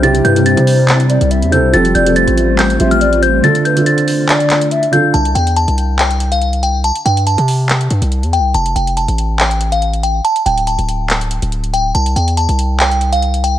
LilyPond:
<<
  \new Staff \with { instrumentName = "Synth bell" } { \time 4/4 \key c \major \tempo 4 = 141 a'''8 g'''8 a'''2~ a'''8 g'''8 | a'''8 g'''8 a'''4 g'''8. f'''8. g'''8 | a'''8 g'''8 a'''2~ a'''8 g'''8 | a''8 g''8 a''4 g''8. f''8. g''8 |
a''8 g''8 a''2~ a''8 g''8 | a''8 g''8 a''4 g''8. f''8. g''8 | a''8 g''8 a''2~ a''8 g''8 | a''8 g''8 a''4 g''8. f''8. g''8 | }
  \new Staff \with { instrumentName = "Soft synth lead" } { \time 4/4 \key c \major r8 b'8 c''4. d''8 e''8 c''8 | r8 d''8 c''4. e''8 d''8 c''8 | r8 b'8 r4 d''4 e''8 f''8 | r1 |
r1 | r1 | r1 | r1 | }
  \new Staff \with { instrumentName = "Grand piano" } { \time 4/4 \key c \major <c c' e' g'>8. <c c' e' g'>4.~ <c c' e' g'>16 r4 <c c' e' a'>8 | <f c' g' a'>8. <f c' g' a'>4. r16 <f c' g' c''>4~ <f c' g' c''>16 r16 | <d d' f' a'>8. <d d' f' a'>4.~ <d d' f' a'>16 r4 <d d' f' a'>8 | r1 |
r1 | r1 | r1 | r1 | }
  \new Staff \with { instrumentName = "Analog synth pad" } { \time 4/4 \key c \major << { <g e'>1 | <a f'>1~ | <a f'>1 | r1 |
r1 | r1 | r1 | r1 | } \\ { c'1 | g1 | d1 | r1 |
r1 | r1 | r1 | r1 | } >> }
  \new Staff \with { instrumentName = "808-style bass" } { \clef bass \time 4/4 \key c \major b,,8 g,8. c4. c,8 e,16. c,16. | f,,8 f,,8. a,,4~ a,,16 a,,4. | r1 | c,8 e,8. c,2~ c,8.~ |
c,16 r16 g,8. c4~ c16 g,16 c,8 e,16. c,16. | f,,8 f,,8. a,,2~ a,,8. | r8 d,,8. d,,4. d,,4~ d,,16 | c,8 e,8. c,2~ c,8. | }
  \new DrumStaff \with { instrumentName = "Drums" } \drummode { \time 4/4 hh16 hh16 hh16 hh16 hh16 hh16 hho8 <hc hh>16 hh16 hh16 hh16 hh16 hh16 hh8 | hh16 hh16 hh16 hh16 hh16 hh16 hh8 <hc hh>16 hh16 hh16 hh16 hh16 hh16 hh8 | hh16 hh16 hh16 hh16 hh16 hh16 hho8 <hc hh>16 hh16 <hc hh>16 hh16 hh16 hh16 hh8 | hh16 hh16 hh16 hh16 hh16 hh16 hh8 <hc hh>16 hh16 hh16 hh16 hh16 hh16 hh8 |
hh16 hh16 hh16 hh16 hh16 hh16 hho8 <hc hh>16 hh16 hh16 hh16 hh16 hh16 hh8 | hh16 hh16 hh16 hh16 hh16 hh16 hh8 <hc hh>16 hh16 hh16 hh16 hh16 hh16 hh8 | hh16 hh16 hh16 hh16 hh16 hh16 hh8 <hc hh>16 hh16 hh16 hh16 hh16 hh16 hh8 | hh16 hh16 hh16 hh16 hh16 hh16 hh8 <hc hh>16 hh16 hh16 hh16 hh16 hh16 hh8 | }
>>